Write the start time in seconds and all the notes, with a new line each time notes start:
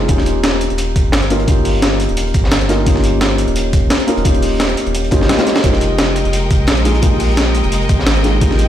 Already playing: G#3 A#3 D#4 F4 G4 G#4
0.07 D#1 A#3 C#4 D#4 F4 G4, kick, closed hi-hat
0.18 snare
0.26 closed hi-hat
0.44 snare, closed hi-hat
0.61 closed hi-hat
0.70 D#1, closed hi-hat
0.78 closed hi-hat
0.96 kick, closed hi-hat
1.12 G1, snare, closed hi-hat
1.22 closed hi-hat
1.30 A#3 C#4 D#4 F4 A#4, closed hi-hat
1.40 closed hi-hat
1.46 A#3 C#4 D#4 F4 G4, kick, closed hi-hat
1.65 closed hi-hat, open hi-hat
1.82 snare, closed hi-hat
2.00 closed hi-hat
2.09 D#1, closed hi-hat
2.17 closed hi-hat
2.27 closed hi-hat
2.34 G1, kick, closed hi-hat
2.44 snare
2.52 snare, closed hi-hat
2.61 closed hi-hat
2.68 A#3 C#4 D#4 F4 A#4, snare, closed hi-hat
2.85 A#3 C#4 D#4 F4 G4, kick, closed hi-hat
2.96 snare
3.04 closed hi-hat
3.21 snare, closed hi-hat
3.38 closed hi-hat
3.48 D#1, closed hi-hat
3.56 closed hi-hat
3.73 kick, closed hi-hat
3.90 snare, closed hi-hat
4.00 closed hi-hat
4.07 A#3 C#4 D#4 F4 A#4, closed hi-hat
4.17 D#1, closed hi-hat
4.24 A#3 C#4 D#4 F4 G4, kick, closed hi-hat
4.34 closed hi-hat
4.42 closed hi-hat, open hi-hat
4.60 snare, closed hi-hat
4.69 closed hi-hat
4.77 closed hi-hat
4.86 D#1, closed hi-hat
4.95 closed hi-hat
5.04 closed hi-hat
5.11 G1 A#3 C#4 D#4 F4 G4, kick, closed hi-hat
5.21 snare
5.29 snare, closed hi-hat, high tom
5.38 A#3 C#4 D#4 F4 C5, snare, closed hi-hat, high tom
5.47 snare, closed hi-hat
5.56 snare, closed hi-hat
5.62 F1 G#3 A#3 D#4 F4 G4 A#4 D#5 G5, kick, closed hi-hat
5.73 snare
5.81 closed hi-hat
5.98 snare, closed hi-hat
6.16 closed hi-hat
6.25 F1, closed hi-hat
6.33 closed hi-hat
6.50 kick, closed hi-hat
6.67 A#1, snare, closed hi-hat
6.77 closed hi-hat
6.85 G#3 A#3 D#4 F4 G#4, closed hi-hat
6.95 closed hi-hat
7.01 G#3 A#3 D#4 F4 G4, kick, closed hi-hat
7.20 closed hi-hat, open hi-hat
7.37 snare, closed hi-hat
7.55 closed hi-hat
7.64 F1, closed hi-hat
7.72 closed hi-hat
7.82 closed hi-hat
7.89 G#1, kick, closed hi-hat
7.99 snare
8.07 snare, closed hi-hat
8.16 closed hi-hat
8.23 G#3 A#3 D#4 F4 G#4, snare, closed hi-hat
8.40 G#3 A#3 D#4 F4 G4, kick, closed hi-hat
8.51 snare
8.59 closed hi-hat